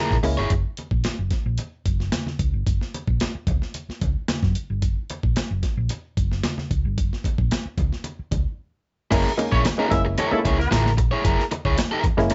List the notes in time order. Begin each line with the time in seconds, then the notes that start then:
Already playing: E4 G#4 A#4
0.10 A#1, kick, snare, high conga
0.23 C#2 G#3 A#3 C#4 E4, muted overdriven electric guitar stroke, open hi-hat
0.37 G1 E4 G#4 C#5
0.50 F#1, kick, closed hi-hat
0.77 closed hi-hat, muted conga
0.91 A#1, kick
1.04 snare, closed hi-hat, high conga
1.19 F#1
1.31 kick, snare, closed hi-hat, muted conga
1.46 A#1
1.58 closed hi-hat, muted conga
1.86 F#1, kick, closed hi-hat
2.00 snare
2.12 snare, closed hi-hat, high conga
2.26 snare, high conga
2.39 C#2, kick, closed hi-hat
2.53 G1
2.66 F#1, kick, closed hi-hat
2.81 snare
2.94 closed hi-hat, muted conga
3.07 A#1, kick
3.20 snare, closed hi-hat, high conga
3.35 muted fingered electric bass stroke
3.47 C#2, kick, closed hi-hat, muted conga, low conga
3.62 snare
3.74 closed hi-hat, muted conga
3.89 muted fingered electric bass stroke, snare
4.01 C#2, kick, closed hi-hat, low conga
4.28 snare, closed hi-hat, high conga
4.42 F#2, kick, snare, high conga
4.55 closed hi-hat
4.70 G1
4.82 F#1, kick, closed hi-hat
5.10 closed hi-hat, muted conga
5.23 A#1, kick
5.36 snare, closed hi-hat, high conga
5.51 F#1
5.63 kick, snare, closed hi-hat, muted conga
5.77 A#1
5.89 closed hi-hat, muted conga
6.17 F#1, kick, closed hi-hat
6.32 snare
6.44 snare, closed hi-hat, high conga
6.58 snare, high conga
6.71 C#2, kick, closed hi-hat
6.85 G1
6.98 F#1, kick, closed hi-hat
7.13 snare
7.24 kick, closed hi-hat, muted conga
7.38 A#1, kick
7.51 snare, closed hi-hat, high conga
7.65 muted fingered electric bass stroke
7.78 C#2, kick, closed hi-hat, muted conga, low conga
7.93 snare
8.04 closed hi-hat, muted conga
8.19 muted fingered electric bass stroke
8.31 C#2, kick, closed hi-hat, low conga
9.11 F#1 G#3 A#3 C#4 E4 G#4 A#4, kick, closed hi-hat, crash
9.37 G#3 A#3 C#4 D#4, muted overdriven electric guitar stroke, closed hi-hat, muted conga
9.52 A#1 C#4 E4 G#4 C#5, kick
9.65 muted overdriven electric guitar stroke, snare, closed hi-hat, high conga
9.78 G#3 A#3 C#4 D#4 E4 G#4 A#4
9.90 F#1 G#3 A#3 C#4 E4 E5, muted overdriven electric guitar stroke, kick, snare, closed hi-hat, low conga
10.05 muted overdriven electric guitar stroke
10.17 C#4 E4 G#4 A#4 C#5, closed hi-hat, muted conga
10.31 G#3 A3 A#3 C#4 D#4 A4, muted fingered electric bass stroke, muted overdriven electric guitar stroke
10.39 E4
10.45 C#2 E4 G#4 C#5, kick, closed hi-hat
10.59 A#3 A#4, muted overdriven electric guitar stroke, snare
10.71 A1 E4 G#4 A#4, snare, closed hi-hat, high conga
10.86 snare, high conga
10.97 A#1, muted overdriven electric guitar stroke, kick, closed hi-hat
11.11 E4 G#4 C#5
11.24 F#1 E4 G#4 A#4, kick, closed hi-hat
11.39 snare
11.51 muted overdriven electric guitar stroke, closed hi-hat, muted conga
11.65 C#2 E4 G#4 C#5, kick
11.77 muted overdriven electric guitar stroke, snare, closed hi-hat, high conga
11.91 E4 G#4 A#4
12.04 muted fingered electric bass stroke, muted overdriven electric guitar stroke, kick, closed hi-hat, muted conga, low conga
12.17 F#1 G#3 A#3 C#4 E4, muted overdriven electric guitar stroke, snare
12.30 muted overdriven electric guitar stroke, closed hi-hat, muted conga